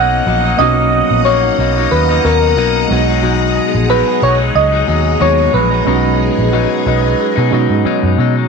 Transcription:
Already playing: picked electric bass B1, clean electric guitar B2 F#3 A#3 D#4, tine electric piano A#3 C#4 D#4 F#4, string machine D#5 F#5 A#5 D#6, synth keys F#5
0.26 picked electric bass A#1, clean electric guitar B2 F#3 A#3 D#4
0.44 clean electric guitar F#3 A#3 D#4
0.57 picked electric bass B1, clean electric guitar B2 F#3 A#3 D#4, tine electric piano B3 C#4 D#4, synth keys D#5, string machine A#5
0.62 tine electric piano F#4
1.11 picked electric bass A#1
1.25 clean electric guitar F#3 A#3 D#4, synth keys C#5
1.58 picked electric bass B1, clean electric guitar B2 F#3 A#3 D#4
1.76 clean electric guitar F#3 A#3 D#4
1.91 picked electric bass D#2, synth keys B4
2.09 clean electric guitar F#3 A#3 D#4
2.24 picked electric bass D#2, clean electric guitar B2 F#3 A#3 D#4, synth keys A#4
2.57 picked electric bass B1, clean electric guitar B2 F#3 A#3 D#4
2.88 picked electric bass B1, clean electric guitar B2 F#3 G#3, tine electric piano G#3 B3 D#4, string machine G#4
2.92 clean electric guitar D#4, tine electric piano F#4
3.08 clean electric guitar F#3 G#3 D#4
3.22 clean electric guitar B2 F#3 G#3 D#4
3.75 picked electric bass A#1
3.88 clean electric guitar B2 F#3 G#3 D#4, synth keys B4
4.21 picked electric bass B1, clean electric guitar B2 F#3 G#3 D#4, synth keys C#5
4.39 clean electric guitar F#3 G#3 D#4
4.55 picked electric bass C#2, synth keys D#5
4.72 clean electric guitar F#3 G#3 D#4
4.87 picked electric bass D#2, clean electric guitar B2 F#3 G#3 D#4
5.20 picked electric bass D#2, clean electric guitar B2 F#3 G#3 D#4, tine electric piano G#3 B3 D#4 F#4, synth keys C#5
5.52 picked electric bass A#1, clean electric guitar B2 F#3 G#3 D#4, synth keys B4
5.71 clean electric guitar F#3 G#3 D#4
5.85 picked electric bass B1, clean electric guitar B2 F#3 G#3 D#4, tine electric piano G#3 C#4 D#4, string machine G#4
5.90 tine electric piano F#4
6.38 picked electric bass A#1
6.52 clean electric guitar B2 F#3 G#3 D#4
6.85 picked electric bass B1, clean electric guitar B2 F#3 G#3 D#4
7.03 clean electric guitar F#3 G#3 D#4
7.36 picked electric bass B2, clean electric guitar F#3 G#3 D#4
7.50 clean electric guitar B2 F#3 G#3 D#4, picked electric bass B2, tine electric piano G#3 C#4 D#4 F#4
7.70 picked electric bass G#2
7.85 clean electric guitar B2 F#3 G#3 D#4, muted picked electric bass stroke
8.03 picked electric bass F#2
8.17 clean electric guitar B2 F#3 G#3 D#4, picked electric bass B2
8.35 clean electric guitar F#3 G#3 D#4

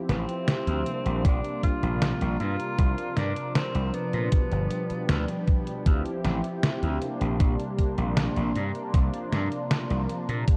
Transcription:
Already playing: analog polysynth F3 C4 E4 G4, ambient pad F3 E5 G5 C6
0.09 slap bass A1, tenor saxophone C4, snare, closed hi-hat
0.29 closed hi-hat
0.48 snare, closed hi-hat
0.67 slap bass D2, closed hi-hat
0.85 analog polysynth C3 G3 A#3 D4, ambient pad G4 D5 A#5, closed hi-hat
1.06 slap bass A#1, closed hi-hat
1.25 slap bass A#1, tenor saxophone D4, kick, closed hi-hat
1.44 closed hi-hat
1.63 tenor saxophone F4, kick, closed hi-hat
1.83 slap bass A#1, closed hi-hat
2.02 snare, closed hi-hat
2.21 slap bass A#1, closed hi-hat
2.40 slap bass G2, tenor saxophone F4, closed hi-hat
2.60 closed hi-hat
2.77 slap bass C2, analog polysynth C3 F3 D4 A#4, ambient pad F3 C6, kick, closed hi-hat
2.98 closed hi-hat
3.17 slap bass G2, tenor saxophone D4, snare, closed hi-hat
3.36 closed hi-hat
3.55 tenor saxophone C4, snare, closed hi-hat
3.75 slap bass C2, closed hi-hat
3.94 tenor saxophone B3, closed hi-hat
4.13 slap bass A#2, closed hi-hat
4.31 analog polysynth B2 F3 G3 D4, ambient pad G5 B5, kick, closed hi-hat
4.52 slap bass G1, closed hi-hat
4.71 closed hi-hat
4.90 muted slap bass stroke, closed hi-hat
5.09 slap bass D2, snare, closed hi-hat
5.28 closed hi-hat
5.47 kick, closed hi-hat
5.67 closed hi-hat
5.85 slap bass D2, analog polysynth F3 C4 E4 G4, ambient pad E5 C6, kick, closed hi-hat
6.06 closed hi-hat
6.25 slap bass A1, snare, closed hi-hat
6.44 closed hi-hat
6.63 snare, closed hi-hat
6.83 slap bass D2, closed hi-hat
7.00 analog polysynth C3 G3 A#3 D4, ambient pad G4 D5 A#5, closed hi-hat
7.21 slap bass A#1, closed hi-hat
7.40 slap bass A#1, kick, closed hi-hat
7.60 closed hi-hat
7.79 kick, closed hi-hat
7.98 slap bass A#1, closed hi-hat
8.17 snare, closed hi-hat
8.36 slap bass A#1, closed hi-hat
8.56 slap bass G2, closed hi-hat
8.75 closed hi-hat
8.93 slap bass C2, analog polysynth C3 F3 A#3 D4, ambient pad F3, kick, closed hi-hat
9.14 closed hi-hat
9.32 slap bass G2, snare, closed hi-hat
9.52 closed hi-hat
9.71 snare, closed hi-hat
9.90 slap bass C2, closed hi-hat
10.10 closed hi-hat
10.29 slap bass A#2, closed hi-hat
10.47 analog polysynth B2 F3 G3 D4, ambient pad G5 B5, kick, closed hi-hat

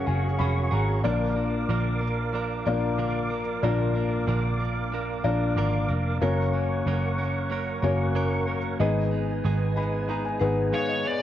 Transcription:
Already playing: felt piano C#4 F#4 G#4 A#4 F5 F#5, tonewheel organ F#4 G#4 C#5 C#6
0.06 picked electric bass F#1, clean electric guitar F#3 C#4 F#4 G#4, felt piano G#5
0.39 picked electric bass F1, clean electric guitar F#3 C#4 F#4 G#4, felt piano B5
0.71 picked electric bass G#1, clean electric guitar F#3 C#4 F#4 G#4, felt piano A#5
1.03 picked electric bass A#1, clean electric guitar A#2 D3 F3 A#3 D4 A#4, felt piano A#2 A#3 D4 F4 D5, tonewheel organ A#4 D5 F5 D6
1.36 clean electric guitar F3 A#3 D4 A#4
1.69 picked electric bass A#1, clean electric guitar A#2 D3 F3 A#3 D4 A#4
2.01 clean electric guitar F3 A#3 D4 A#4
2.33 clean electric guitar F3 A#3 D4 A#4
2.66 picked electric bass A#1, clean electric guitar F3 A#3 D4 A#4, felt piano A#3 D4 F4 D5
2.98 clean electric guitar A#2 D3 F3 A#3 D4 A#4
3.30 clean electric guitar F3 A#3 D4 A#4
3.63 picked electric bass A#1, clean electric guitar A#2 D3 F3 A#3 D4 A#4, felt piano A#2 A#3 D4 F4 D5
3.95 clean electric guitar F3 A#3 D4 A#4
4.27 picked electric bass A#1, clean electric guitar A#2 D3 F3 A#3 D4 A#4
4.59 clean electric guitar F3 A#3 D4 A#4
4.92 clean electric guitar F3 A#3 D4 A#4
5.24 picked electric bass A#1, clean electric guitar F3 A#3 D4 A#4, felt piano A#3 D4 F4 D5
5.56 picked electric bass G#1, clean electric guitar A#2 D3 F3 A#3 D4 A#4
5.88 picked electric bass F1, clean electric guitar F3 A#3 D4 A#4
6.21 picked electric bass F#1, clean electric guitar F#2 C#3 F#3 A#3 C#4 A#4, felt piano A#3 C#4 F#4 C#5, tonewheel organ C#5 F#5 C#6
6.53 clean electric guitar F#3 A#3 C#4 A#4
6.86 picked electric bass F#1, clean electric guitar F#2 C#3 F#3 A#3 C#4 A#4
7.18 clean electric guitar F#3 A#3 C#4 A#4
7.50 clean electric guitar F#3 A#3 C#4 A#4
7.82 picked electric bass F#1, clean electric guitar F#3 A#3 C#4 A#4, felt piano A#3 C#4 F#4 C#5
8.15 clean electric guitar F#2 C#3 F#3 A#3 C#4 A#4
8.47 clean electric guitar F#3 A#3 C#4 A#4
8.79 picked electric bass G#1, clean electric guitar G#2 D#3 G#3 B3 D#4 G#4, felt piano G#2 B3 D#4 G#4 D#5, tonewheel organ D#4 B4 G#5
9.11 clean electric guitar G#3 B3 D#4 G#4
9.44 picked electric bass G#1, clean electric guitar G#2 D#3 G#3 B3 D#4 G#4
9.76 clean electric guitar G#3 B3 D#4 G#4, felt piano B5
10.08 clean electric guitar G#3 B3 D#4 G#4, felt piano A#5
10.25 felt piano G#5
10.40 picked electric bass G#1, clean electric guitar G#3 B3 D#4 G#4, felt piano B3 D#4 G#4 B4 F#5
10.72 clean electric guitar G#2 D#3 G#3 B3 D#4 G#4, lead electric guitar C#5, felt piano F5
10.89 felt piano D#5
11.05 clean electric guitar G#3 B3 D#4 G#4, felt piano C#5, lead electric guitar D5

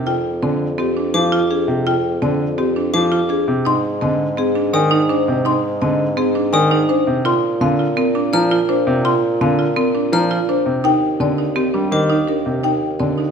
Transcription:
Already playing: grand piano C3
0.06 bassoon F2, marimba F4 G5
0.43 grand piano D3, marimba C4 D5
0.78 marimba C4 G4
0.97 marimba D4
1.14 grand piano F3, marimba C5 F5, xylophone D6
1.32 marimba F4
1.51 marimba D4 G#4
1.68 grand piano C3
1.87 marimba F4 G5
2.22 grand piano D3, marimba C4 D5
2.58 marimba C4 G4
2.76 marimba D4
2.93 grand piano F3, marimba C5 F5, xylophone D6
3.12 marimba F4
3.29 marimba D4 G#4
3.48 grand piano C3
3.65 bassoon G#2, marimba D#4 C6
4.01 grand piano D3, marimba C4 D#5
4.38 marimba C4 G#4
4.55 marimba D4
4.73 grand piano D#3, marimba D5 G#5, xylophone D#6
4.91 marimba D#4
5.09 marimba D4 C5
5.28 grand piano C3
5.45 marimba D#4 C6
5.81 grand piano D3, marimba C4 D#5
6.17 marimba C4 G#4
6.35 marimba D4
6.53 grand piano D#3, marimba D5 G#5, xylophone D#6
6.71 marimba D#4
6.89 marimba D4 C5
7.07 grand piano C3
7.25 bassoon A#2, marimba F4 C6
7.61 grand piano D3, marimba C4 F5
7.79 marimba F4
7.97 marimba C4 A#4
8.15 marimba D4
8.33 grand piano F3, marimba D5 A#5, xylophone F6
8.51 marimba F4
8.69 marimba D4 C5
8.87 grand piano C3
9.05 marimba F4 C6
9.41 grand piano D3, marimba C4 F5
9.59 marimba F4
9.77 marimba C4 A#4
9.95 marimba D4
10.12 grand piano F3, marimba D5 A#5, xylophone F6
10.31 marimba F4
10.49 marimba D4 C5
10.66 grand piano C3
10.84 bassoon D#2, marimba D#4 G5
11.20 grand piano D3, marimba C4 D5
11.38 marimba D#4
11.56 marimba C4 G4
11.74 grand piano G3, marimba D4
11.92 grand piano D#3, marimba C5 D#5, xylophone D6
12.10 marimba D#4
12.28 marimba D4 A#4
12.46 grand piano C3
12.63 marimba D#4 G5
12.99 grand piano D3, marimba C4 D5
13.18 marimba D#4

